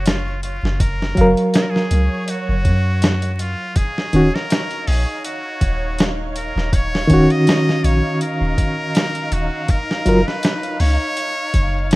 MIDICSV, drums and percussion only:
0, 0, Header, 1, 2, 480
1, 0, Start_track
1, 0, Key_signature, -6, "minor"
1, 0, Tempo, 740741
1, 518, Time_signature, 4, 2, 24, 8
1, 7748, End_track
2, 0, Start_track
2, 0, Title_t, "Drums"
2, 37, Note_on_c, 9, 42, 84
2, 49, Note_on_c, 9, 38, 101
2, 102, Note_off_c, 9, 42, 0
2, 113, Note_off_c, 9, 38, 0
2, 279, Note_on_c, 9, 42, 60
2, 344, Note_off_c, 9, 42, 0
2, 423, Note_on_c, 9, 38, 44
2, 487, Note_off_c, 9, 38, 0
2, 518, Note_on_c, 9, 36, 101
2, 519, Note_on_c, 9, 42, 83
2, 583, Note_off_c, 9, 36, 0
2, 584, Note_off_c, 9, 42, 0
2, 662, Note_on_c, 9, 38, 53
2, 727, Note_off_c, 9, 38, 0
2, 758, Note_on_c, 9, 36, 89
2, 759, Note_on_c, 9, 42, 62
2, 823, Note_off_c, 9, 36, 0
2, 824, Note_off_c, 9, 42, 0
2, 890, Note_on_c, 9, 42, 42
2, 955, Note_off_c, 9, 42, 0
2, 996, Note_on_c, 9, 42, 88
2, 1008, Note_on_c, 9, 38, 110
2, 1061, Note_off_c, 9, 42, 0
2, 1073, Note_off_c, 9, 38, 0
2, 1141, Note_on_c, 9, 38, 34
2, 1205, Note_off_c, 9, 38, 0
2, 1237, Note_on_c, 9, 42, 66
2, 1302, Note_off_c, 9, 42, 0
2, 1476, Note_on_c, 9, 42, 79
2, 1541, Note_off_c, 9, 42, 0
2, 1716, Note_on_c, 9, 42, 60
2, 1717, Note_on_c, 9, 36, 93
2, 1781, Note_off_c, 9, 36, 0
2, 1781, Note_off_c, 9, 42, 0
2, 1957, Note_on_c, 9, 42, 77
2, 1968, Note_on_c, 9, 38, 107
2, 2021, Note_off_c, 9, 42, 0
2, 2033, Note_off_c, 9, 38, 0
2, 2088, Note_on_c, 9, 42, 46
2, 2152, Note_off_c, 9, 42, 0
2, 2199, Note_on_c, 9, 42, 60
2, 2263, Note_off_c, 9, 42, 0
2, 2435, Note_on_c, 9, 42, 79
2, 2437, Note_on_c, 9, 36, 108
2, 2500, Note_off_c, 9, 42, 0
2, 2501, Note_off_c, 9, 36, 0
2, 2579, Note_on_c, 9, 38, 45
2, 2644, Note_off_c, 9, 38, 0
2, 2676, Note_on_c, 9, 42, 66
2, 2741, Note_off_c, 9, 42, 0
2, 2822, Note_on_c, 9, 38, 57
2, 2887, Note_off_c, 9, 38, 0
2, 2918, Note_on_c, 9, 42, 84
2, 2930, Note_on_c, 9, 38, 108
2, 2983, Note_off_c, 9, 42, 0
2, 2995, Note_off_c, 9, 38, 0
2, 3050, Note_on_c, 9, 42, 41
2, 3114, Note_off_c, 9, 42, 0
2, 3158, Note_on_c, 9, 46, 83
2, 3223, Note_off_c, 9, 46, 0
2, 3399, Note_on_c, 9, 42, 78
2, 3464, Note_off_c, 9, 42, 0
2, 3637, Note_on_c, 9, 36, 87
2, 3637, Note_on_c, 9, 42, 65
2, 3702, Note_off_c, 9, 36, 0
2, 3702, Note_off_c, 9, 42, 0
2, 3878, Note_on_c, 9, 42, 79
2, 3890, Note_on_c, 9, 38, 105
2, 3943, Note_off_c, 9, 42, 0
2, 3955, Note_off_c, 9, 38, 0
2, 4119, Note_on_c, 9, 42, 64
2, 4184, Note_off_c, 9, 42, 0
2, 4262, Note_on_c, 9, 38, 42
2, 4327, Note_off_c, 9, 38, 0
2, 4359, Note_on_c, 9, 36, 104
2, 4360, Note_on_c, 9, 42, 86
2, 4424, Note_off_c, 9, 36, 0
2, 4425, Note_off_c, 9, 42, 0
2, 4504, Note_on_c, 9, 38, 52
2, 4569, Note_off_c, 9, 38, 0
2, 4599, Note_on_c, 9, 36, 90
2, 4599, Note_on_c, 9, 42, 66
2, 4664, Note_off_c, 9, 36, 0
2, 4664, Note_off_c, 9, 42, 0
2, 4732, Note_on_c, 9, 42, 40
2, 4797, Note_off_c, 9, 42, 0
2, 4841, Note_on_c, 9, 42, 79
2, 4853, Note_on_c, 9, 38, 117
2, 4906, Note_off_c, 9, 42, 0
2, 4918, Note_off_c, 9, 38, 0
2, 4984, Note_on_c, 9, 38, 36
2, 5049, Note_off_c, 9, 38, 0
2, 5083, Note_on_c, 9, 42, 71
2, 5148, Note_off_c, 9, 42, 0
2, 5319, Note_on_c, 9, 42, 81
2, 5384, Note_off_c, 9, 42, 0
2, 5559, Note_on_c, 9, 36, 92
2, 5560, Note_on_c, 9, 42, 67
2, 5623, Note_off_c, 9, 36, 0
2, 5625, Note_off_c, 9, 42, 0
2, 5799, Note_on_c, 9, 42, 83
2, 5811, Note_on_c, 9, 38, 106
2, 5864, Note_off_c, 9, 42, 0
2, 5876, Note_off_c, 9, 38, 0
2, 5930, Note_on_c, 9, 42, 45
2, 5994, Note_off_c, 9, 42, 0
2, 6038, Note_on_c, 9, 42, 64
2, 6103, Note_off_c, 9, 42, 0
2, 6275, Note_on_c, 9, 42, 79
2, 6277, Note_on_c, 9, 36, 107
2, 6340, Note_off_c, 9, 42, 0
2, 6342, Note_off_c, 9, 36, 0
2, 6421, Note_on_c, 9, 38, 49
2, 6486, Note_off_c, 9, 38, 0
2, 6517, Note_on_c, 9, 42, 66
2, 6582, Note_off_c, 9, 42, 0
2, 6661, Note_on_c, 9, 38, 54
2, 6726, Note_off_c, 9, 38, 0
2, 6758, Note_on_c, 9, 42, 85
2, 6770, Note_on_c, 9, 38, 110
2, 6823, Note_off_c, 9, 42, 0
2, 6835, Note_off_c, 9, 38, 0
2, 6891, Note_on_c, 9, 42, 43
2, 6955, Note_off_c, 9, 42, 0
2, 6998, Note_on_c, 9, 46, 82
2, 7063, Note_off_c, 9, 46, 0
2, 7237, Note_on_c, 9, 42, 77
2, 7302, Note_off_c, 9, 42, 0
2, 7476, Note_on_c, 9, 42, 67
2, 7477, Note_on_c, 9, 36, 88
2, 7541, Note_off_c, 9, 36, 0
2, 7541, Note_off_c, 9, 42, 0
2, 7717, Note_on_c, 9, 42, 84
2, 7729, Note_on_c, 9, 38, 112
2, 7748, Note_off_c, 9, 38, 0
2, 7748, Note_off_c, 9, 42, 0
2, 7748, End_track
0, 0, End_of_file